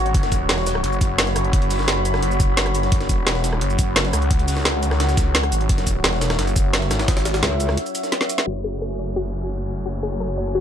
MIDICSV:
0, 0, Header, 1, 8, 480
1, 0, Start_track
1, 0, Key_signature, 3, "minor"
1, 0, Tempo, 346821
1, 201, Time_signature, 4, 2, 24, 8
1, 14676, End_track
2, 0, Start_track
2, 0, Title_t, "Ambient pad"
2, 0, Program_c, 0, 92
2, 0, Note_on_c, 0, 66, 85
2, 0, Note_on_c, 0, 73, 78
2, 0, Note_on_c, 0, 78, 93
2, 186, Note_off_c, 0, 78, 0
2, 200, Note_on_c, 0, 83, 91
2, 4026, Note_off_c, 0, 83, 0
2, 4040, Note_on_c, 0, 78, 94
2, 7866, Note_off_c, 0, 78, 0
2, 7880, Note_on_c, 0, 76, 91
2, 11666, Note_off_c, 0, 66, 0
2, 11666, Note_off_c, 0, 73, 0
2, 11706, Note_off_c, 0, 76, 0
2, 11719, Note_on_c, 0, 66, 81
2, 11719, Note_on_c, 0, 68, 73
2, 11720, Note_on_c, 0, 69, 89
2, 14676, Note_off_c, 0, 66, 0
2, 14676, Note_off_c, 0, 68, 0
2, 14676, Note_off_c, 0, 69, 0
2, 14676, End_track
3, 0, Start_track
3, 0, Title_t, "String section"
3, 0, Program_c, 1, 48
3, 11719, Note_on_c, 1, 66, 87
3, 11888, Note_on_c, 1, 57, 76
3, 12164, Note_on_c, 1, 80, 89
3, 12532, Note_on_c, 1, 73, 74
3, 14676, Note_off_c, 1, 57, 0
3, 14676, Note_off_c, 1, 66, 0
3, 14676, Note_off_c, 1, 73, 0
3, 14676, Note_off_c, 1, 80, 0
3, 14676, End_track
4, 0, Start_track
4, 0, Title_t, "Synth arpeggio sound"
4, 0, Program_c, 2, 84
4, 11720, Note_on_c, 2, 66, 77
4, 11809, Note_off_c, 2, 66, 0
4, 11961, Note_on_c, 2, 68, 78
4, 12108, Note_off_c, 2, 68, 0
4, 12201, Note_on_c, 2, 69, 73
4, 12348, Note_off_c, 2, 69, 0
4, 12441, Note_on_c, 2, 73, 76
4, 12588, Note_off_c, 2, 73, 0
4, 12681, Note_on_c, 2, 66, 103
4, 12828, Note_off_c, 2, 66, 0
4, 13641, Note_on_c, 2, 66, 74
4, 13729, Note_off_c, 2, 66, 0
4, 13881, Note_on_c, 2, 68, 76
4, 14028, Note_off_c, 2, 68, 0
4, 14121, Note_on_c, 2, 69, 75
4, 14268, Note_off_c, 2, 69, 0
4, 14361, Note_on_c, 2, 73, 73
4, 14508, Note_off_c, 2, 73, 0
4, 14600, Note_on_c, 2, 66, 98
4, 14676, Note_off_c, 2, 66, 0
4, 14676, End_track
5, 0, Start_track
5, 0, Title_t, "Wobble bass"
5, 0, Program_c, 3, 39
5, 10280, Note_on_c, 3, 37, 94
5, 10760, Note_off_c, 3, 37, 0
5, 14676, End_track
6, 0, Start_track
6, 0, Title_t, "Detuned saw bass"
6, 0, Program_c, 4, 39
6, 0, Note_on_c, 4, 32, 99
6, 181, Note_off_c, 4, 32, 0
6, 201, Note_on_c, 4, 30, 100
6, 661, Note_off_c, 4, 30, 0
6, 680, Note_on_c, 4, 28, 93
6, 1141, Note_off_c, 4, 28, 0
6, 1160, Note_on_c, 4, 30, 96
6, 1861, Note_off_c, 4, 30, 0
6, 1880, Note_on_c, 4, 30, 100
6, 3061, Note_off_c, 4, 30, 0
6, 3080, Note_on_c, 4, 30, 93
6, 4021, Note_off_c, 4, 30, 0
6, 4041, Note_on_c, 4, 30, 98
6, 4501, Note_off_c, 4, 30, 0
6, 4521, Note_on_c, 4, 28, 92
6, 4981, Note_off_c, 4, 28, 0
6, 5001, Note_on_c, 4, 30, 94
6, 5701, Note_off_c, 4, 30, 0
6, 5720, Note_on_c, 4, 37, 100
6, 7621, Note_off_c, 4, 37, 0
6, 7640, Note_on_c, 4, 32, 101
6, 7861, Note_off_c, 4, 32, 0
6, 7881, Note_on_c, 4, 30, 102
6, 8342, Note_off_c, 4, 30, 0
6, 8361, Note_on_c, 4, 28, 91
6, 8821, Note_off_c, 4, 28, 0
6, 8840, Note_on_c, 4, 30, 94
6, 9541, Note_off_c, 4, 30, 0
6, 9561, Note_on_c, 4, 32, 97
6, 10261, Note_off_c, 4, 32, 0
6, 11720, Note_on_c, 4, 30, 85
6, 14676, Note_off_c, 4, 30, 0
6, 14676, End_track
7, 0, Start_track
7, 0, Title_t, "Downlifter"
7, 0, Program_c, 5, 103
7, 11720, Note_on_c, 5, 60, 69
7, 14676, Note_off_c, 5, 60, 0
7, 14676, End_track
8, 0, Start_track
8, 0, Title_t, "Drums"
8, 81, Note_on_c, 9, 42, 39
8, 200, Note_off_c, 9, 42, 0
8, 200, Note_on_c, 9, 36, 127
8, 200, Note_on_c, 9, 42, 94
8, 320, Note_off_c, 9, 42, 0
8, 320, Note_on_c, 9, 42, 38
8, 321, Note_on_c, 9, 38, 52
8, 339, Note_off_c, 9, 36, 0
8, 440, Note_off_c, 9, 42, 0
8, 440, Note_on_c, 9, 36, 65
8, 440, Note_on_c, 9, 42, 64
8, 440, Note_on_c, 9, 82, 55
8, 441, Note_off_c, 9, 42, 0
8, 441, Note_on_c, 9, 42, 70
8, 459, Note_off_c, 9, 38, 0
8, 579, Note_off_c, 9, 36, 0
8, 579, Note_off_c, 9, 42, 0
8, 579, Note_off_c, 9, 82, 0
8, 680, Note_on_c, 9, 38, 126
8, 680, Note_on_c, 9, 42, 91
8, 681, Note_off_c, 9, 38, 0
8, 681, Note_off_c, 9, 42, 0
8, 681, Note_on_c, 9, 38, 119
8, 681, Note_on_c, 9, 42, 88
8, 801, Note_off_c, 9, 38, 0
8, 801, Note_on_c, 9, 38, 57
8, 819, Note_off_c, 9, 42, 0
8, 920, Note_on_c, 9, 42, 65
8, 920, Note_on_c, 9, 82, 57
8, 921, Note_off_c, 9, 38, 0
8, 921, Note_off_c, 9, 42, 0
8, 921, Note_on_c, 9, 38, 54
8, 921, Note_on_c, 9, 42, 73
8, 1040, Note_on_c, 9, 37, 59
8, 1059, Note_off_c, 9, 38, 0
8, 1059, Note_off_c, 9, 42, 0
8, 1059, Note_off_c, 9, 82, 0
8, 1160, Note_on_c, 9, 42, 92
8, 1161, Note_off_c, 9, 42, 0
8, 1161, Note_on_c, 9, 42, 92
8, 1179, Note_off_c, 9, 37, 0
8, 1280, Note_on_c, 9, 82, 26
8, 1299, Note_off_c, 9, 42, 0
8, 1400, Note_off_c, 9, 82, 0
8, 1400, Note_on_c, 9, 36, 107
8, 1400, Note_on_c, 9, 42, 74
8, 1400, Note_on_c, 9, 82, 58
8, 1539, Note_off_c, 9, 36, 0
8, 1539, Note_off_c, 9, 42, 0
8, 1539, Note_off_c, 9, 82, 0
8, 1640, Note_on_c, 9, 38, 118
8, 1640, Note_on_c, 9, 42, 94
8, 1760, Note_off_c, 9, 38, 0
8, 1760, Note_off_c, 9, 42, 0
8, 1760, Note_on_c, 9, 38, 51
8, 1760, Note_on_c, 9, 42, 35
8, 1880, Note_off_c, 9, 42, 0
8, 1880, Note_on_c, 9, 37, 50
8, 1880, Note_on_c, 9, 42, 73
8, 1880, Note_on_c, 9, 82, 59
8, 1899, Note_off_c, 9, 38, 0
8, 2000, Note_off_c, 9, 42, 0
8, 2000, Note_on_c, 9, 42, 36
8, 2018, Note_off_c, 9, 37, 0
8, 2018, Note_off_c, 9, 82, 0
8, 2120, Note_off_c, 9, 42, 0
8, 2120, Note_on_c, 9, 36, 127
8, 2120, Note_on_c, 9, 42, 95
8, 2240, Note_off_c, 9, 42, 0
8, 2240, Note_on_c, 9, 42, 36
8, 2241, Note_off_c, 9, 42, 0
8, 2241, Note_on_c, 9, 42, 43
8, 2259, Note_off_c, 9, 36, 0
8, 2360, Note_off_c, 9, 42, 0
8, 2360, Note_on_c, 9, 42, 59
8, 2360, Note_on_c, 9, 46, 84
8, 2360, Note_on_c, 9, 82, 58
8, 2480, Note_on_c, 9, 38, 56
8, 2498, Note_off_c, 9, 46, 0
8, 2499, Note_off_c, 9, 42, 0
8, 2499, Note_off_c, 9, 82, 0
8, 2600, Note_off_c, 9, 38, 0
8, 2600, Note_on_c, 9, 38, 112
8, 2600, Note_on_c, 9, 42, 92
8, 2739, Note_off_c, 9, 38, 0
8, 2739, Note_off_c, 9, 42, 0
8, 2840, Note_on_c, 9, 42, 64
8, 2840, Note_on_c, 9, 82, 61
8, 2841, Note_off_c, 9, 42, 0
8, 2841, Note_on_c, 9, 42, 73
8, 2960, Note_on_c, 9, 37, 54
8, 2961, Note_on_c, 9, 38, 48
8, 2979, Note_off_c, 9, 42, 0
8, 2979, Note_off_c, 9, 82, 0
8, 3080, Note_on_c, 9, 42, 90
8, 3081, Note_off_c, 9, 42, 0
8, 3081, Note_on_c, 9, 42, 92
8, 3098, Note_off_c, 9, 37, 0
8, 3099, Note_off_c, 9, 38, 0
8, 3200, Note_on_c, 9, 82, 28
8, 3219, Note_off_c, 9, 42, 0
8, 3320, Note_off_c, 9, 82, 0
8, 3320, Note_on_c, 9, 36, 116
8, 3320, Note_on_c, 9, 42, 62
8, 3320, Note_on_c, 9, 82, 57
8, 3321, Note_off_c, 9, 42, 0
8, 3321, Note_on_c, 9, 42, 68
8, 3458, Note_off_c, 9, 82, 0
8, 3459, Note_off_c, 9, 36, 0
8, 3459, Note_off_c, 9, 42, 0
8, 3560, Note_on_c, 9, 38, 127
8, 3560, Note_on_c, 9, 42, 90
8, 3561, Note_off_c, 9, 38, 0
8, 3561, Note_off_c, 9, 42, 0
8, 3561, Note_on_c, 9, 38, 123
8, 3561, Note_on_c, 9, 42, 88
8, 3680, Note_off_c, 9, 42, 0
8, 3680, Note_on_c, 9, 37, 46
8, 3680, Note_on_c, 9, 42, 35
8, 3699, Note_off_c, 9, 38, 0
8, 3800, Note_off_c, 9, 42, 0
8, 3800, Note_on_c, 9, 42, 65
8, 3800, Note_on_c, 9, 82, 56
8, 3801, Note_off_c, 9, 42, 0
8, 3801, Note_on_c, 9, 42, 74
8, 3819, Note_off_c, 9, 37, 0
8, 3920, Note_off_c, 9, 42, 0
8, 3920, Note_on_c, 9, 38, 44
8, 3920, Note_on_c, 9, 42, 36
8, 3938, Note_off_c, 9, 82, 0
8, 4040, Note_off_c, 9, 42, 0
8, 4040, Note_on_c, 9, 42, 90
8, 4041, Note_on_c, 9, 36, 123
8, 4059, Note_off_c, 9, 38, 0
8, 4160, Note_on_c, 9, 38, 50
8, 4161, Note_off_c, 9, 42, 0
8, 4161, Note_on_c, 9, 42, 35
8, 4179, Note_off_c, 9, 36, 0
8, 4280, Note_off_c, 9, 42, 0
8, 4280, Note_on_c, 9, 42, 75
8, 4280, Note_on_c, 9, 82, 57
8, 4281, Note_on_c, 9, 36, 59
8, 4298, Note_off_c, 9, 38, 0
8, 4419, Note_off_c, 9, 36, 0
8, 4419, Note_off_c, 9, 42, 0
8, 4419, Note_off_c, 9, 82, 0
8, 4520, Note_on_c, 9, 38, 114
8, 4520, Note_on_c, 9, 42, 87
8, 4521, Note_off_c, 9, 38, 0
8, 4521, Note_off_c, 9, 42, 0
8, 4521, Note_on_c, 9, 38, 118
8, 4521, Note_on_c, 9, 42, 90
8, 4640, Note_off_c, 9, 38, 0
8, 4640, Note_on_c, 9, 38, 56
8, 4659, Note_off_c, 9, 42, 0
8, 4760, Note_off_c, 9, 38, 0
8, 4760, Note_on_c, 9, 38, 53
8, 4760, Note_on_c, 9, 42, 73
8, 4760, Note_on_c, 9, 82, 61
8, 4880, Note_on_c, 9, 37, 53
8, 4899, Note_off_c, 9, 38, 0
8, 4899, Note_off_c, 9, 42, 0
8, 4899, Note_off_c, 9, 82, 0
8, 5000, Note_on_c, 9, 42, 88
8, 5001, Note_off_c, 9, 42, 0
8, 5001, Note_on_c, 9, 42, 95
8, 5019, Note_off_c, 9, 37, 0
8, 5121, Note_on_c, 9, 82, 28
8, 5139, Note_off_c, 9, 42, 0
8, 5241, Note_off_c, 9, 82, 0
8, 5241, Note_on_c, 9, 36, 105
8, 5241, Note_on_c, 9, 42, 70
8, 5241, Note_on_c, 9, 82, 60
8, 5379, Note_off_c, 9, 36, 0
8, 5379, Note_off_c, 9, 42, 0
8, 5379, Note_off_c, 9, 82, 0
8, 5480, Note_on_c, 9, 38, 124
8, 5480, Note_on_c, 9, 42, 91
8, 5481, Note_off_c, 9, 38, 0
8, 5481, Note_off_c, 9, 42, 0
8, 5481, Note_on_c, 9, 38, 123
8, 5481, Note_on_c, 9, 42, 94
8, 5600, Note_off_c, 9, 42, 0
8, 5600, Note_on_c, 9, 42, 35
8, 5601, Note_off_c, 9, 38, 0
8, 5601, Note_on_c, 9, 38, 50
8, 5720, Note_off_c, 9, 42, 0
8, 5720, Note_on_c, 9, 37, 49
8, 5720, Note_on_c, 9, 42, 65
8, 5720, Note_on_c, 9, 82, 62
8, 5739, Note_off_c, 9, 38, 0
8, 5840, Note_off_c, 9, 42, 0
8, 5840, Note_on_c, 9, 42, 36
8, 5859, Note_off_c, 9, 37, 0
8, 5859, Note_off_c, 9, 82, 0
8, 5960, Note_off_c, 9, 42, 0
8, 5960, Note_on_c, 9, 42, 92
8, 5961, Note_on_c, 9, 36, 118
8, 6080, Note_off_c, 9, 42, 0
8, 6080, Note_on_c, 9, 42, 44
8, 6099, Note_off_c, 9, 36, 0
8, 6200, Note_off_c, 9, 42, 0
8, 6200, Note_on_c, 9, 42, 64
8, 6200, Note_on_c, 9, 46, 86
8, 6200, Note_on_c, 9, 82, 62
8, 6320, Note_on_c, 9, 38, 57
8, 6338, Note_off_c, 9, 42, 0
8, 6338, Note_off_c, 9, 82, 0
8, 6339, Note_off_c, 9, 46, 0
8, 6440, Note_off_c, 9, 38, 0
8, 6440, Note_on_c, 9, 38, 119
8, 6440, Note_on_c, 9, 42, 86
8, 6579, Note_off_c, 9, 38, 0
8, 6579, Note_off_c, 9, 42, 0
8, 6680, Note_on_c, 9, 42, 68
8, 6680, Note_on_c, 9, 82, 62
8, 6800, Note_on_c, 9, 37, 54
8, 6801, Note_on_c, 9, 38, 49
8, 6818, Note_off_c, 9, 82, 0
8, 6819, Note_off_c, 9, 42, 0
8, 6920, Note_off_c, 9, 38, 0
8, 6920, Note_on_c, 9, 38, 109
8, 6920, Note_on_c, 9, 42, 81
8, 6938, Note_off_c, 9, 37, 0
8, 7040, Note_on_c, 9, 82, 30
8, 7041, Note_off_c, 9, 38, 0
8, 7041, Note_on_c, 9, 38, 49
8, 7059, Note_off_c, 9, 42, 0
8, 7160, Note_off_c, 9, 38, 0
8, 7160, Note_off_c, 9, 82, 0
8, 7160, Note_on_c, 9, 38, 48
8, 7160, Note_on_c, 9, 42, 67
8, 7160, Note_on_c, 9, 82, 65
8, 7161, Note_on_c, 9, 36, 102
8, 7299, Note_off_c, 9, 36, 0
8, 7299, Note_off_c, 9, 38, 0
8, 7299, Note_off_c, 9, 42, 0
8, 7299, Note_off_c, 9, 82, 0
8, 7400, Note_on_c, 9, 38, 120
8, 7400, Note_on_c, 9, 42, 100
8, 7521, Note_off_c, 9, 42, 0
8, 7521, Note_on_c, 9, 37, 46
8, 7521, Note_on_c, 9, 42, 37
8, 7539, Note_off_c, 9, 38, 0
8, 7640, Note_off_c, 9, 42, 0
8, 7640, Note_on_c, 9, 42, 76
8, 7641, Note_off_c, 9, 42, 0
8, 7641, Note_on_c, 9, 42, 64
8, 7641, Note_on_c, 9, 82, 63
8, 7659, Note_off_c, 9, 37, 0
8, 7760, Note_off_c, 9, 42, 0
8, 7760, Note_on_c, 9, 42, 37
8, 7779, Note_off_c, 9, 82, 0
8, 7880, Note_off_c, 9, 42, 0
8, 7880, Note_on_c, 9, 42, 96
8, 7881, Note_off_c, 9, 42, 0
8, 7881, Note_on_c, 9, 36, 115
8, 7881, Note_on_c, 9, 42, 95
8, 8000, Note_off_c, 9, 42, 0
8, 8000, Note_on_c, 9, 42, 40
8, 8001, Note_on_c, 9, 38, 49
8, 8019, Note_off_c, 9, 36, 0
8, 8120, Note_off_c, 9, 42, 0
8, 8120, Note_on_c, 9, 42, 67
8, 8120, Note_on_c, 9, 82, 63
8, 8121, Note_off_c, 9, 42, 0
8, 8121, Note_on_c, 9, 36, 56
8, 8121, Note_on_c, 9, 42, 71
8, 8139, Note_off_c, 9, 38, 0
8, 8259, Note_off_c, 9, 36, 0
8, 8259, Note_off_c, 9, 42, 0
8, 8259, Note_off_c, 9, 82, 0
8, 8360, Note_on_c, 9, 38, 116
8, 8360, Note_on_c, 9, 42, 97
8, 8361, Note_off_c, 9, 38, 0
8, 8361, Note_off_c, 9, 42, 0
8, 8361, Note_on_c, 9, 38, 111
8, 8361, Note_on_c, 9, 42, 91
8, 8481, Note_off_c, 9, 38, 0
8, 8481, Note_on_c, 9, 38, 55
8, 8499, Note_off_c, 9, 42, 0
8, 8600, Note_off_c, 9, 38, 0
8, 8600, Note_on_c, 9, 38, 107
8, 8600, Note_on_c, 9, 42, 80
8, 8600, Note_on_c, 9, 82, 63
8, 8721, Note_off_c, 9, 38, 0
8, 8721, Note_off_c, 9, 42, 0
8, 8721, Note_on_c, 9, 37, 55
8, 8721, Note_on_c, 9, 38, 107
8, 8721, Note_on_c, 9, 42, 80
8, 8739, Note_off_c, 9, 82, 0
8, 8840, Note_off_c, 9, 38, 0
8, 8840, Note_off_c, 9, 42, 0
8, 8840, Note_on_c, 9, 38, 108
8, 8840, Note_on_c, 9, 42, 96
8, 8859, Note_off_c, 9, 37, 0
8, 8960, Note_off_c, 9, 42, 0
8, 8960, Note_on_c, 9, 42, 82
8, 8961, Note_on_c, 9, 82, 28
8, 8979, Note_off_c, 9, 38, 0
8, 9081, Note_off_c, 9, 42, 0
8, 9081, Note_off_c, 9, 82, 0
8, 9081, Note_on_c, 9, 36, 99
8, 9081, Note_on_c, 9, 42, 73
8, 9081, Note_on_c, 9, 82, 64
8, 9219, Note_off_c, 9, 36, 0
8, 9219, Note_off_c, 9, 42, 0
8, 9219, Note_off_c, 9, 82, 0
8, 9320, Note_on_c, 9, 38, 124
8, 9320, Note_on_c, 9, 42, 94
8, 9321, Note_off_c, 9, 38, 0
8, 9321, Note_off_c, 9, 42, 0
8, 9321, Note_on_c, 9, 38, 123
8, 9321, Note_on_c, 9, 42, 99
8, 9440, Note_off_c, 9, 38, 0
8, 9440, Note_on_c, 9, 38, 54
8, 9441, Note_off_c, 9, 42, 0
8, 9441, Note_on_c, 9, 42, 37
8, 9560, Note_off_c, 9, 42, 0
8, 9560, Note_on_c, 9, 37, 47
8, 9560, Note_on_c, 9, 42, 70
8, 9560, Note_on_c, 9, 82, 65
8, 9561, Note_off_c, 9, 38, 0
8, 9561, Note_off_c, 9, 42, 0
8, 9561, Note_on_c, 9, 38, 112
8, 9561, Note_on_c, 9, 42, 85
8, 9680, Note_off_c, 9, 38, 0
8, 9680, Note_off_c, 9, 42, 0
8, 9680, Note_on_c, 9, 38, 111
8, 9680, Note_on_c, 9, 42, 39
8, 9699, Note_off_c, 9, 37, 0
8, 9699, Note_off_c, 9, 82, 0
8, 9800, Note_off_c, 9, 38, 0
8, 9800, Note_off_c, 9, 42, 0
8, 9800, Note_on_c, 9, 38, 110
8, 9800, Note_on_c, 9, 42, 83
8, 9801, Note_on_c, 9, 36, 120
8, 9920, Note_off_c, 9, 38, 0
8, 9920, Note_off_c, 9, 42, 0
8, 9920, Note_on_c, 9, 38, 103
8, 9920, Note_on_c, 9, 42, 41
8, 9939, Note_off_c, 9, 36, 0
8, 10040, Note_off_c, 9, 38, 0
8, 10040, Note_off_c, 9, 42, 0
8, 10040, Note_on_c, 9, 38, 112
8, 10040, Note_on_c, 9, 42, 88
8, 10040, Note_on_c, 9, 82, 59
8, 10160, Note_off_c, 9, 38, 0
8, 10160, Note_off_c, 9, 42, 0
8, 10160, Note_on_c, 9, 38, 111
8, 10160, Note_on_c, 9, 42, 82
8, 10178, Note_off_c, 9, 82, 0
8, 10280, Note_off_c, 9, 38, 0
8, 10280, Note_off_c, 9, 42, 0
8, 10280, Note_on_c, 9, 38, 115
8, 10280, Note_on_c, 9, 42, 87
8, 10419, Note_off_c, 9, 38, 0
8, 10419, Note_off_c, 9, 42, 0
8, 10520, Note_on_c, 9, 42, 68
8, 10520, Note_on_c, 9, 82, 62
8, 10640, Note_on_c, 9, 37, 57
8, 10640, Note_on_c, 9, 38, 46
8, 10658, Note_off_c, 9, 82, 0
8, 10659, Note_off_c, 9, 42, 0
8, 10760, Note_on_c, 9, 42, 89
8, 10778, Note_off_c, 9, 37, 0
8, 10779, Note_off_c, 9, 38, 0
8, 10880, Note_on_c, 9, 82, 27
8, 10899, Note_off_c, 9, 42, 0
8, 11000, Note_off_c, 9, 82, 0
8, 11000, Note_on_c, 9, 42, 78
8, 11000, Note_on_c, 9, 82, 63
8, 11120, Note_off_c, 9, 82, 0
8, 11120, Note_on_c, 9, 82, 31
8, 11121, Note_on_c, 9, 38, 45
8, 11139, Note_off_c, 9, 42, 0
8, 11240, Note_off_c, 9, 38, 0
8, 11240, Note_on_c, 9, 38, 63
8, 11240, Note_on_c, 9, 42, 99
8, 11258, Note_off_c, 9, 82, 0
8, 11360, Note_off_c, 9, 38, 0
8, 11360, Note_off_c, 9, 42, 0
8, 11360, Note_on_c, 9, 38, 65
8, 11360, Note_on_c, 9, 42, 39
8, 11480, Note_off_c, 9, 42, 0
8, 11480, Note_on_c, 9, 42, 73
8, 11480, Note_on_c, 9, 82, 65
8, 11481, Note_off_c, 9, 42, 0
8, 11481, Note_on_c, 9, 42, 73
8, 11498, Note_off_c, 9, 38, 0
8, 11600, Note_off_c, 9, 42, 0
8, 11600, Note_on_c, 9, 38, 89
8, 11600, Note_on_c, 9, 42, 38
8, 11601, Note_off_c, 9, 38, 0
8, 11601, Note_on_c, 9, 38, 44
8, 11618, Note_off_c, 9, 82, 0
8, 11738, Note_off_c, 9, 42, 0
8, 11739, Note_off_c, 9, 38, 0
8, 12440, Note_on_c, 9, 82, 57
8, 12578, Note_off_c, 9, 82, 0
8, 12920, Note_on_c, 9, 82, 57
8, 13058, Note_off_c, 9, 82, 0
8, 13400, Note_on_c, 9, 82, 58
8, 13520, Note_off_c, 9, 82, 0
8, 13520, Note_on_c, 9, 82, 27
8, 13659, Note_off_c, 9, 82, 0
8, 13880, Note_on_c, 9, 82, 51
8, 14018, Note_off_c, 9, 82, 0
8, 14360, Note_on_c, 9, 82, 54
8, 14498, Note_off_c, 9, 82, 0
8, 14676, End_track
0, 0, End_of_file